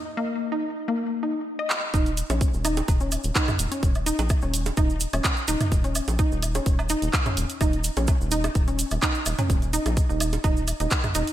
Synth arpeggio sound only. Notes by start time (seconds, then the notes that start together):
0.17 A#3
0.52 D#4
0.88 A#3
1.23 D#4
1.59 D#5
1.94 D#4
2.30 C#4
2.65 D#4
3.01 C#4
3.36 D#4
3.72 C#4
4.06 D#4
4.43 C#4
4.77 D#4
5.13 C#4
5.48 D#4
5.84 C#4
6.19 D#4
6.55 C#4
6.90 D#4
7.26 C#4
7.61 D#4
7.97 C#4
8.32 D#4
8.68 C#4
9.03 D#4
9.39 C#4
9.73 D#4
10.09 D#4
10.44 D#4
10.80 D#4
11.15 D#4